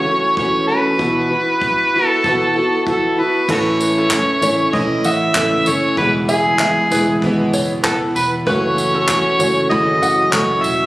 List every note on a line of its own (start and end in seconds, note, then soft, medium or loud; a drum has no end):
0.00 0.37 C#5 loud
0.05 0.35 E3 soft
0.05 0.36 A3 soft
0.05 0.38 C#4 soft
0.05 0.37 F#4 soft
0.37 0.68 E3 medium
0.37 0.68 A3 medium
0.37 0.67 C#4 medium
0.37 0.67 F#4 medium
0.37 0.66 C#5 medium
0.37 kick loud
0.68 0.97 E3 soft
0.68 0.98 A3 soft
0.68 0.98 C#4 soft
0.68 0.98 F#4 soft
0.68 2.07 B4 medium
0.98 1.30 B2 medium
0.98 1.30 E3 medium
0.98 1.30 B3 medium
0.98 1.30 E4 medium
0.98 1.30 F#4 medium
0.98 kick medium
1.31 1.94 B3 soft
1.31 1.95 E4 soft
1.31 1.93 F#4 medium
1.61 kick loud
1.94 2.25 B3 soft
1.94 2.25 E4 soft
1.94 2.25 F#4 medium
2.07 2.82 A4 medium
2.24 2.55 B2 medium
2.24 2.56 E3 medium
2.24 2.55 B3 medium
2.24 2.55 E4 medium
2.24 2.54 F#4 medium
2.24 kick loud
2.55 2.86 B3 soft
2.55 2.86 E4 soft
2.55 2.86 F#4 medium
2.86 3.17 E3 medium
2.86 3.18 B3 medium
2.86 3.17 E4 medium
2.86 3.15 F#4 medium
2.86 3.21 A4 medium
2.86 kick loud
3.16 3.48 B3 soft
3.16 3.48 E4 soft
3.16 3.48 F#4 medium
3.16 3.50 B4 medium
3.47 4.24 A1 loud
3.47 4.10 A2 medium
3.47 5.96 C#3 medium
3.47 4.09 E3 medium
3.47 8.43 E3 medium
3.47 4.09 A3 medium
3.47 5.95 A3 medium
3.47 4.10 C#4 medium
3.47 4.11 E4 medium
3.47 10.86 E4 medium
3.47 3.58 F#4 medium
3.47 3.58 A4 medium
3.47 3.79 B4 medium
3.47 4.76 C#5 loud
3.47 kick loud
3.47 crash loud
3.81 tambourine medium
3.98 4.11 A4 medium
4.09 4.41 E3 medium
4.09 4.42 A3 medium
4.09 4.40 C#4 medium
4.09 4.40 E4 medium
4.09 kick loud
4.09 clap medium
4.41 4.67 A1 medium
4.41 4.72 A3 soft
4.41 4.73 C#4 medium
4.41 4.73 E4 medium
4.41 4.72 C#5 medium
4.41 tambourine medium
4.72 4.99 B1 medium
4.72 5.35 A2 medium
4.72 5.34 E3 medium
4.72 5.35 A3 medium
4.72 5.36 C#4 medium
4.72 5.37 E4 medium
4.72 5.03 E4 medium
4.72 5.08 D#5 loud
4.72 kick loud
5.04 5.30 A1 medium
5.04 5.70 E5 loud
5.04 5.21 F#5 medium
5.04 tambourine medium
5.34 5.61 A1 medium
5.34 5.66 E3 medium
5.34 5.67 A3 medium
5.34 5.66 C#4 medium
5.34 5.65 E4 medium
5.34 kick loud
5.34 clap loud
5.66 5.92 F#1 medium
5.66 5.97 A3 soft
5.66 5.98 C#4 soft
5.66 5.97 E4 soft
5.66 5.97 C#5 loud
5.66 tambourine medium
5.96 6.73 E1 loud
5.96 6.59 E2 medium
5.96 6.60 B2 medium
5.96 8.44 B2 medium
5.96 6.59 E3 medium
5.96 6.59 G#3 medium
5.96 8.44 B3 medium
5.96 6.59 B3 medium
5.96 6.61 E4 medium
5.96 6.12 B4 medium
5.96 kick loud
6.29 7.18 G#4 medium
6.29 6.45 E5 medium
6.29 tambourine medium
6.59 6.91 E3 medium
6.59 6.91 G#3 medium
6.59 6.91 B3 medium
6.59 6.89 E4 medium
6.59 6.89 E5 medium
6.59 kick loud
6.59 clap loud
6.90 7.16 E1 medium
6.90 7.22 E3 soft
6.90 7.22 G#3 medium
6.90 7.22 B3 medium
6.90 7.22 E4 medium
6.90 7.08 B4 medium
6.90 tambourine medium
7.22 7.47 G#1 medium
7.22 7.84 E2 medium
7.22 7.84 B2 medium
7.22 7.82 E3 medium
7.22 7.85 G#3 medium
7.22 7.83 B3 medium
7.22 7.84 E4 medium
7.22 kick loud
7.53 8.04 F#1 medium
7.53 7.83 C#5 medium
7.53 tambourine medium
7.83 8.46 E3 medium
7.83 8.46 B3 medium
7.83 8.47 E4 medium
7.83 7.98 A4 medium
7.83 8.00 B4 medium
7.83 kick loud
7.83 clap loud
8.15 8.41 E1 medium
8.15 8.32 B4 medium
8.15 8.30 B4 medium
8.15 tambourine medium
8.46 9.22 F#1 loud
8.46 9.09 F#2 medium
8.46 10.86 C#3 medium
8.46 9.09 C#3 medium
8.46 9.09 E3 medium
8.46 10.86 F#3 medium
8.46 10.86 A3 medium
8.46 9.09 A3 medium
8.46 9.10 C#4 medium
8.46 9.09 F#4 medium
8.46 8.76 B4 loud
8.46 9.68 C#5 loud
8.46 kick loud
8.78 tambourine medium
8.94 9.08 A4 medium
9.08 9.40 E3 medium
9.08 9.40 A3 medium
9.08 9.39 C#4 medium
9.08 9.38 F#4 medium
9.08 kick loud
9.08 clap loud
9.39 9.65 F#1 loud
9.39 9.69 E3 medium
9.39 9.69 A3 medium
9.39 9.70 C#4 medium
9.39 9.69 F#4 medium
9.39 9.70 C#5 medium
9.39 tambourine medium
9.70 9.97 G#1 loud
9.70 10.33 F#2 medium
9.70 10.33 C#3 medium
9.70 10.32 E3 medium
9.70 10.33 A3 medium
9.70 10.33 C#4 medium
9.70 10.01 E4 medium
9.70 10.33 F#4 medium
9.70 10.35 D#5 loud
9.70 kick loud
10.01 10.27 F#1 medium
10.01 10.19 F#5 medium
10.01 tambourine medium
10.32 10.59 F#1 loud
10.32 10.86 E3 medium
10.32 10.86 A3 medium
10.32 10.86 C#4 medium
10.32 10.86 F#4 medium
10.32 10.65 C#5 loud
10.32 kick loud
10.32 clap loud
10.63 10.86 E1 medium
10.63 10.86 E5 loud
10.63 tambourine medium